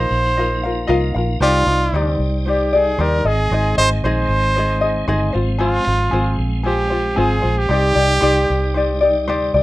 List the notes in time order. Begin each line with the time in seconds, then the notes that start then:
Already playing: F3 A#3 D#4 F4 A#4 C5 D#5 F5
0.11 A#1
0.37 F4 A#4 D#5 F5
0.63 F4 A#4 F5
0.87 C2 F4 A#4 D#5 F5
1.15 A#1 F4 A#4 F5
1.40 C2 C3 G3 D#4 F4 G4 C5 D5
1.67 C2 D#4 D5
1.92 D2 D#4 G4 C5 D5
2.19 C2
2.45 D#4 G4 C5 D5
2.73 D#4 G4 G#4 D5
2.98 D#2 D#4 G4 A#4 C5 D5
3.24 G#1 D#3 G#3 C4 D#4 G#4 D#5
3.51 G#1 D#4 G#4 C5 D#5
3.78 G#1 D#4 G#4 C5 D#5
4.03 A#1 D#4 G#4 C5 D#5
4.29 G#1
4.56 D#4 G#4 C5 D#5
4.81 D#4 G#4 D#5
5.08 G1 D#4 G#4 C5 D#5
5.33 G#1 F3 C4 F4 C5
5.58 C4 F4 G#4 C5
5.85 G#1 C4 C5
6.11 G#1 C4 F4 G#4 C5
6.38 A#1
6.63 C4 F4 G4 G#4 C5
6.90 C4 F4 C5
7.16 G#1 C4 F4 G#4 C5
7.42 A#1 C4 F4 C5
7.58 G4
7.69 C2 C3 G3 D#4 G4 C5 D5
7.95 C2 D#4 G4 D5
8.21 C2 D#4 G4 C5 D5
8.50 C2
8.74 D#4 G4 C5 D5
9.01 D#4 G4 D5
9.28 D2 D#4 G4 C5 D5
9.54 C2 D#4 G4 D5